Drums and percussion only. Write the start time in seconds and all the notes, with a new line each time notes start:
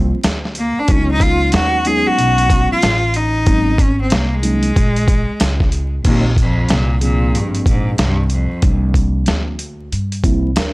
0.24 snare, closed hi-hat
0.45 snare
0.55 closed hi-hat
0.88 kick, closed hi-hat
1.20 kick, closed hi-hat
1.52 snare, closed hi-hat
1.85 closed hi-hat
2.19 closed hi-hat
2.38 closed hi-hat
2.50 kick, closed hi-hat
2.82 snare, closed hi-hat
3.14 closed hi-hat
3.46 kick, closed hi-hat
3.78 kick, closed hi-hat
4.10 snare, closed hi-hat
4.43 closed hi-hat
4.63 closed hi-hat
4.76 kick, closed hi-hat
4.96 closed hi-hat
5.08 kick, closed hi-hat
5.40 snare, closed hi-hat
5.60 kick, snare
5.72 closed hi-hat
6.05 kick, closed hi-hat, crash
6.36 kick, closed hi-hat
6.69 snare, closed hi-hat
7.01 closed hi-hat
7.35 closed hi-hat
7.55 closed hi-hat
7.66 kick, closed hi-hat
7.98 snare, closed hi-hat
8.30 closed hi-hat
8.62 kick, closed hi-hat
8.94 kick, closed hi-hat
9.26 snare, closed hi-hat
9.59 closed hi-hat
9.92 closed hi-hat
10.12 closed hi-hat
10.24 kick, closed hi-hat
10.56 snare, closed hi-hat